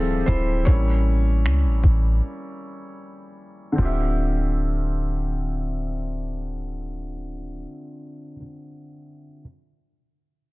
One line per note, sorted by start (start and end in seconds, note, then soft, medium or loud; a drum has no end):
0.00 0.24 D1 loud
0.00 0.63 E3 medium
0.00 0.69 F3 soft
0.00 0.67 G3 soft
0.00 0.68 C4 medium
0.00 0.29 E4 medium
0.00 0.69 G4 medium
0.00 0.68 G#4 medium
0.00 0.28 A4 medium
0.00 0.69 E5 medium
0.26 0.65 D1 loud
0.26 0.65 E4 medium
0.26 0.63 C5 medium
0.26 kick medium
0.26 closed hi-hat medium
0.65 1.46 A1 loud
0.65 1.79 G3 medium
0.65 1.80 A#3 soft
0.65 1.80 C#4 medium
0.65 1.80 E4 medium
0.65 1.79 C#5 medium
0.65 kick loud
1.45 1.66 C#2 loud
1.45 finger snap loud
1.65 1.83 A1 loud
1.84 2.21 A1 loud
1.84 kick medium
3.72 8.33 D3 medium
3.72 8.35 C4 medium
3.78 7.66 D1 loud
3.78 8.36 F4 medium
3.78 8.38 G4 medium
3.78 kick medium
3.78 crash medium
3.85 8.39 E5 medium